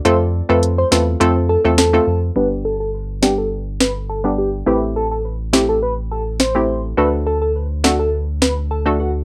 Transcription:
<<
  \new Staff \with { instrumentName = "Soft synth lead" } { \time 4/4 \key g \major \tempo 4 = 104 c''16 r8 b'16 r16 c''16 b'16 r16 c''16 r16 a'16 r16 a'8. r16 | b'16 r16 a'16 a'16 r8 g'16 a'16 r8 b'16 r16 a'16 r16 g'16 r16 | b'16 r16 a'16 a'16 r8 g'16 a'16 b'16 r16 a'16 r16 c''8. r16 | b'16 r16 a'16 a'16 r8 fis'16 a'16 r8 b'16 r16 a'16 r16 fis'16 r16 | }
  \new Staff \with { instrumentName = "Synth pluck" } { \time 4/4 \key g \major <a c' f' a'>16 r8 <a c' f' a'>8. <a c' f' a'>8 <a c' f' a'>8. <a c' f' a'>16 r16 <a c' f' a'>16 r8 | <g b d' g'>4. <g b d' g'>8 r4 r16 <g b d' g'>16 r8 | <a c' e' g'>4. <a c' e' g'>8 r4 r16 <a c' e' g'>16 r8 | <a d' fis' a'>4. <a d' fis' a'>8 r4 r16 <a d' fis' a'>16 r8 | }
  \new Staff \with { instrumentName = "Analog synth bass" } { \clef bass \time 4/4 \key g \major f,8. f,8. e,8 f,8. e,8. f,8 | g,,1 | a,,1 | d,1 | }
  \new DrumStaff \with { instrumentName = "Drums" } \drummode { \time 4/4 hh4 hh8 sn8 hh4 <hh sn>4 | r4 r8 sn8 r8 sn8 r4 | r4 r8 sn8 r4 sn4 | r4 r8 sn8 r8 sn8 r4 | }
>>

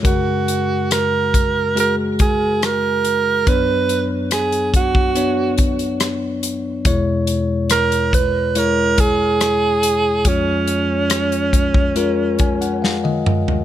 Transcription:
<<
  \new Staff \with { instrumentName = "Alto saxophone" } { \time 4/4 \key fis \major \tempo 4 = 70 fis'4 ais'4 ais'8 gis'8 ais'4 | b'8 r8 gis'8 fis'4 r4. | r4 ais'8 b'8 ais'8 gis'4. | cis'2. r4 | }
  \new Staff \with { instrumentName = "Tine electric piano" } { \time 4/4 \key fis \major << { r1 | r1 | r1 | r2 r8 gis''16 fis''16 eis''16 dis''8. | } \\ { <gis fis' ais'>2 <gis fis' gis'>2 | <b d' cis''>2 <b d' cis''>2 | <gis e' cis''>2 <gis e' cis''>2 | <gis eis' cis''>2 <gis eis' ais'>2 | } >> }
  \new Staff \with { instrumentName = "Tine electric piano" } { \clef bass \time 4/4 \key fis \major <fis, cis>1 | <fis, fis>1 | <e, b,>1 | <eis, eis>1 | }
  \new DrumStaff \with { instrumentName = "Drums" } \drummode { \time 4/4 <hh bd>8 hh8 <hh ss>8 <hh bd>8 hh8 <hh bd>8 <hh ss>8 hh8 | <hh bd>8 hh8 <hh ss>16 hh16 <hh bd>16 bd16 hh8 <hh bd>16 hh16 <hh ss>8 hh8 | <hh bd>8 hh8 <hh ss>16 hh16 <hh bd>8 hh8 <hh bd>8 <hh ss>8 hh8 | <hh bd>8 hh8 <hh ss>16 hh16 <hh bd>16 bd16 hh8 <hh bd>16 hh16 sn16 tommh16 toml16 tomfh16 | }
>>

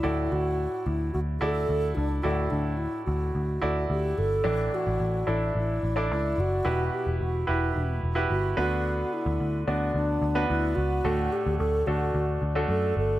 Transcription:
<<
  \new Staff \with { instrumentName = "Alto flute" } { \time 4/4 \key d \major \tempo 4 = 109 e'8 fis'4 e'8 fis'8 a'4 d'8 | fis'8 d'8 e'8 fis'4. g'8 a'8~ | a'8 fis'4 e'8 e'4 e'8 fis'8~ | fis'8 g'8 fis'8 e'4 r8 fis'8 fis'8~ |
fis'8 e'4 d'8 d'4 e'8 fis'8~ | fis'8 g'8 a'8 fis'4 r8 a'8 a'8 | }
  \new Staff \with { instrumentName = "Grand piano" } { \time 4/4 \key d \major <e' fis' a' d''>4.~ <e' fis' a' d''>16 r8. <e' fis' a' d''>4~ <e' fis' a' d''>16 r16 | <e' fis' a' d''>4.~ <e' fis' a' d''>16 r8. <e' fis' a' d''>4~ <e' fis' a' d''>16 r16 | <d' e' a' d''>4~ <d' e' a' d''>16 r16 <d' e' a' d''>4 r16 <d' e' a' d''>4 r16 | <e' fis' g' b'>4~ <e' fis' g' b'>16 r16 <e' fis' g' b'>4 r16 <e' fis' g' b'>8. <b d' fis' b'>8~ |
<b d' fis' b'>4~ <b d' fis' b'>16 r16 <b d' fis' d''>4 r16 <b d' fis' b'>4 r16 | <a d' fis' a'>4~ <a d' fis' a'>16 r16 <a d' fis' a'>4 r16 <a d' fis' a'>4 r16 | }
  \new Staff \with { instrumentName = "Grand piano" } { \clef bass \time 4/4 \key d \major a,4. r2 r8 | a,4. r2 r8 | <a, e>4. r2 r8 | b,4. r2 d8~ |
d4 r2. | a,4. r2 r8 | }
  \new Staff \with { instrumentName = "Picked electric bass" } { \clef bass \time 4/4 \key d \major d,8 d,8. r16 d,8 d,8 d,8 d,8 cis,8 | d,8 d,8. r16 d,8 d,8 d,8 d,8 g,,8 | a,,8 r16 a,,16 a,,8 a,,8 a,,8 a,,8 cis,8 fis,,8 | e,,8 r16 e,,16 e,,8 e,,8 e,,8 e,,8 g,,8 d,8~ |
d,8 r16 d,16 d,8 d,8 d,8 d,8 d,8 cis,8 | d,8 r16 d,16 d,8 d,8 d,8 d,8 fis,8 g,,8 | }
>>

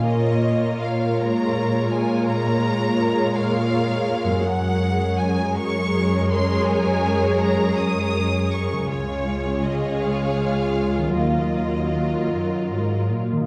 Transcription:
<<
  \new Staff \with { instrumentName = "Violin section" } { \time 6/8 \key ges \major \tempo 4. = 54 ees''4 f''8 bes''4 aes''8 | bes''4. f''4. | ges''4 aes''8 des'''4 c'''8 | aes''4 bes''8 ees'''4 des'''8 |
des''4 ees''8 f''4. | ees''2~ ees''8 r8 | }
  \new Staff \with { instrumentName = "Violin section" } { \time 6/8 \key ges \major <bes' des''>2.~ | <bes' des''>2. | <bes' des''>2.~ | <bes' des''>2. |
<aes' des''>2. | <f' bes'>2~ <f' bes'>8. r16 | }
  \new Staff \with { instrumentName = "Harp" } { \time 6/8 \key ges \major <bes, des' aes' bes'>2.~ | <bes, des' aes' bes'>2. | <ges, des' aes' bes'>2.~ | <ges, des' aes' bes'>2. |
<des des' aes' des''>2. | <ees ges bes f''>2. | }
  \new Staff \with { instrumentName = "Viola section" } { \time 6/8 \key ges \major << { f'2.~ | f'2. | aes'2.~ | aes'2. |
f'2.~ | f'2~ f'8. r16 | } \\ { bes4. aes4.~ | aes2. | aes2.~ | aes2. |
aes2. | ges2~ ges8. r16 | } >> }
  \new Staff \with { instrumentName = "Cello section" } { \clef bass \time 6/8 \key ges \major bes,2.~ | bes,2. | ges,2.~ | ges,2. |
des,2. | ees,4. ges,8 aes,8 bes,8 | }
>>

